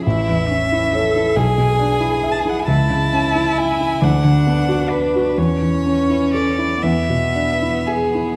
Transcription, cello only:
\new Staff \with { instrumentName = "Cello" } { \time 6/8 \key a \major \tempo 4. = 45 e'8 cis'8 a'8 gis'4. | e'4. d'4. | cis'4. b4. | }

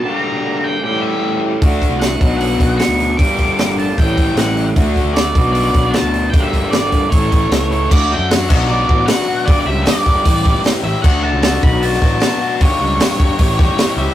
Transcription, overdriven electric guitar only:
\new Staff \with { instrumentName = "Overdriven electric guitar" } { \time 4/4 \key d \major \tempo 4 = 153 <g, d g bes d' g'>2 <a, e g cis' g'>2 | <d a d' fis'>4. <b, fis b d' fis'>2~ <b, fis b d' fis'>8 | <g, d g bes d' g'>2 <a, e g cis' g'>2 | <d a d' fis'>4. <b, fis b d' fis'>2~ <b, fis b d' fis'>8 |
<g, d g bes d' g'>2 <a, e a cis' a'>2 | <d a d' fis'>8 <a d' fis'>8 <d a d' fis'>8 <b, fis b d' fis'>8 <fis b d' fis'>8 <b, fis b d' fis'>8 <fis b d' fis'>8 <b d' fis'>8 | <g, d g bes d' g'>8 <g bes d' g'>8 <g, d g bes d' g'>8 <g bes d' g'>8 <a, e g cis' g'>8 <a, e g cis' g'>8 <e g cis' g'>8 <g cis' g'>8 | <d a d' fis'>8 <a d' fis'>8 <d a d' fis'>8 <b, fis b d' fis'>8 <fis b d' fis'>8 <b, fis b d' fis'>8 <fis b d' fis'>8 <b d' fis'>8 |
<g, d g bes d' g'>8 <g bes d' g'>8 <g, d g bes d' g'>8 <g bes d' g'>8 <a, e g cis' g'>8 <a, e g cis' g'>8 <e g cis' g'>8 <g cis' g'>8 | }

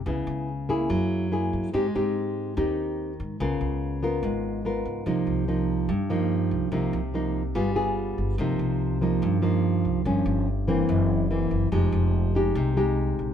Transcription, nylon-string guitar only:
\new Staff \with { instrumentName = "Nylon-string guitar" } { \time 4/4 \key c \minor \tempo 4 = 144 << { <ces' fes' aes'>4 r8 <bes fes' aes'>4. <ais e' gis'>4 | <c' ees' g'>8 <c' ees' g'>4. <c' ees' g'>4. r8 | <b f' bes'>4. <b f' bes'>4. <b f' bes'>4 | <f bes ees'>4 <f bes ees'>4 r8 <f bes ees'>4. |
<f bes ees'>8 r8 <f bes ees'>8 r8 <b f' aes'>8 <b f' aes'>4. | <f bes ees'>4. <f bes ees'>4 <f bes ees'>4. | <f bes des'>4 r8 <e bes c'>4. <e ais bis>4 | <aes ees' g'>4. <aes ees' g'>4 <aes ees' g'>4. | } \\ { des2 fis2 | aes2 ees2 | des2 aes,2 | c2 g,2 |
c2 g2 | c2 g,2 | g,2 fis,2 | f2 c2 | } >> }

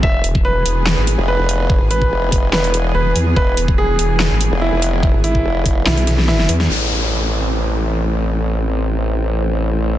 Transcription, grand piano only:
\new Staff \with { instrumentName = "Grand piano" } { \time 4/4 \key a \minor \tempo 4 = 144 e''8 r8 b'2 b'4~ | b'8 b'4. b'8 r8 b'8 r8 | b'8 r8 gis'2 e'4~ | e'8 e'4. e'8 r8 e'8 r8 |
r1 | r1 | }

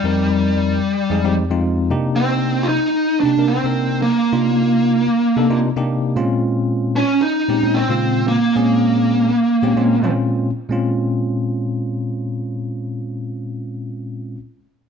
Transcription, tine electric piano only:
\new Staff \with { instrumentName = "Tine electric piano" } { \time 4/4 \key bes \dorian \tempo 4 = 113 <f, g c' ees' bes'>4. r8 <f, aes c' ees' aes'>16 <f, aes c' ees' g'>16 r16 <f, aes c' ees' f'>8. <c bes d' ees' g'>8~ | <c bes d' ees' g'>4 r4 <c bes d' ees' g'>16 <c bes d' ees' bes'>16 r16 <c bes d' ees' bes'>8. r8 | <c bes d' ees' f'>4. r8 <c bes d' ees' a'>16 <c bes d' ees' f'>16 r16 <c bes d' ees' g'>8. <bes, aes c' des' f'>8~ | <bes, aes c' des' f'>4 r4 <bes, aes c' des' g'>16 <bes, aes c' des' ees'>16 r16 <bes, des aes c' f'>8. r8 |
<bes, aes c' des' aes'>4. r8 <bes, aes c' des' g'>16 <bes, aes c' des' f'>16 r16 <bes, aes c' des' f'>8. r8 | <bes, aes c' des' f'>1~ | <bes, aes c' des' f'>1 | }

